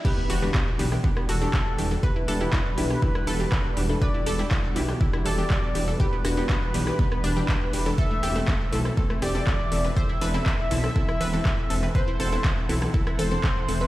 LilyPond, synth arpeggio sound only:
\new Staff \with { instrumentName = "Synth arpeggio sound" } { \time 4/4 \key e \minor \tempo 4 = 121 << { g'8 fis'8 r4. fis'4. | b'8 a'8 r4. a'4. | b'8 a'8 r4. a'4. | g'8 fis'8 r4. d'4. |
a'8 g'8 r4. g'4. | c''8 b'8 r4. b'4. | b'8 a'8 r4. a'4. | } \\ { r16 b16 r16 b16 b16 r16 b16 r16 b16 b16 r4. | r16 e'16 r16 e'16 e'16 r16 e'16 r16 e'16 e'16 r4. | r16 e'16 r16 e'16 e'16 r16 e'16 r16 e'16 e'16 r4. | r16 b16 r16 b16 b16 r16 b16 r16 b16 b16 r4. |
r16 a16 r16 a16 a16 r16 a16 r16 a16 a16 r4. | r16 e'16 r16 e'16 e'16 r16 e'16 r16 e'16 e'16 r4. | r16 e'16 r16 e'16 e'16 r16 e'16 r16 e'16 e'16 r4. | } >> }